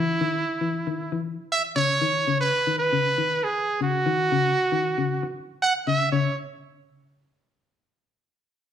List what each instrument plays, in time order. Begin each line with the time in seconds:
Already playing: clean electric guitar E3, trumpet E4
0.21 clean electric guitar D#3
0.61 clean electric guitar E3
0.87 clean electric guitar D#3
1.12 clean electric guitar E3
1.52 trumpet E5
1.76 clean electric guitar C#3, trumpet C#5
2.01 clean electric guitar D#3
2.28 clean electric guitar C#3
2.41 trumpet B4
2.67 clean electric guitar D#3
2.78 trumpet B4
2.93 clean electric guitar C#3
3.18 clean electric guitar D#3
3.44 trumpet G#4
3.81 clean electric guitar C#3, trumpet F#4
4.06 clean electric guitar D#3
4.32 clean electric guitar C#3
4.72 clean electric guitar D#3
4.98 clean electric guitar C#3
5.23 muted clean electric guitar stroke
5.62 trumpet F#5
5.87 clean electric guitar C#3, trumpet E5
6.12 clean electric guitar C#3, trumpet C#5